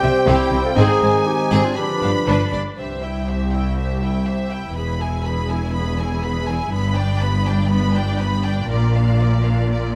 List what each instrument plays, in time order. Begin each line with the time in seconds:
Already playing: trombone section C3 G3, french horn section C4 C5, trumpet section G4, clarinet C5, violin section G5
0.02 double bass section C2, cello section C3, viola section C4, violin section E5
0.26 double bass section C2, cello section C3, viola section C4, trumpet section E4, clarinet G4, violin section G4
0.51 double bass section C2, cello section C3, viola section C4, violin section C5
0.64 trumpet section F4, clarinet A4
0.76 double bass section G#1, cello section G#2, trombone section D#3 G#3, viola section C4, trumpet section D#4, clarinet G#4, violin section G#4 G#5
1.01 double bass section G#1, cello section G#2, viola section C4, violin section C5
1.26 trumpet section D#4, clarinet G4
1.51 double bass section G#1, cello section G#2, viola section C4, violin section G#4
1.64 trumpet section D4, clarinet F4
1.75 trombone section D3 F3, french horn section D4 B4, trumpet section D4, clarinet G4, violin section B5
2.02 double bass section G1, cello section G2, viola section D4, violin section F5
2.28 double bass section G1, cello section G2, viola section D4, violin section B4
2.52 double bass section G1, cello section G2, viola section D4, violin section D5
2.77 double bass section C2, cello section C2, viola section G4, violin section C5 E5
3.02 viola section E4, violin section E5 G5
3.27 viola section G4, violin section C5 E5
3.52 viola section E4, violin section E5 G5
3.77 viola section G4, violin section C5 E5
4.01 viola section E4, violin section E5 G5
4.26 viola section G4, violin section C5 E5
4.51 viola section E4, violin section E5 G5
4.75 double bass section E1, cello section E2, viola section G#4, violin section B4 B5
5.00 viola section E4, violin section G#4 G#5
5.24 viola section G#4, violin section B4 B5
5.50 viola section E4, violin section G#4 G#5
5.74 viola section G#4, violin section B4 B5
5.99 viola section E4, violin section G#4 G#5
6.23 viola section G#4, violin section B4 B5
6.47 viola section E4, violin section G#4 G#5
6.71 double bass section G1, cello section G2, viola section B3, violin section B4 B5
6.95 viola section D4, violin section D5 G5
7.21 viola section B3, violin section B4 B5
7.45 viola section D4, violin section D5 G5
7.69 viola section B3, violin section B4 B5
7.93 viola section D4, violin section D5 G5
8.18 viola section B3, violin section B4 B5
8.44 viola section D4, violin section D5 G5
8.69 double bass section A#1, cello section A#2, viola section F4, violin section A#4 D5
8.95 viola section D4, violin section D5 F5
9.20 viola section F4, violin section A#4 D5
9.45 viola section D4, violin section D5 F5
9.70 viola section F4, violin section A#4 D5